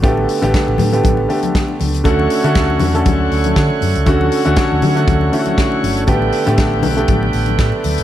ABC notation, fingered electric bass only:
X:1
M:4/4
L:1/16
Q:"Swing 16ths" 1/4=119
K:D
V:1 name="Fingered electric bass" clef=bass
A,,,2 z A,,, z A,,, A,,2 A,,,2 z4 C,,2 | D,,2 z D, D,,2 E,,2 D,,2 D,,2 D, z F,, C,, | D,,2 z D,, z D,, D,2 D,,2 z4 G,,,2 | A,,,2 z A,, A,,,2 B,,,2 A,,,2 A,,,2 A,, z D,, G,,, |]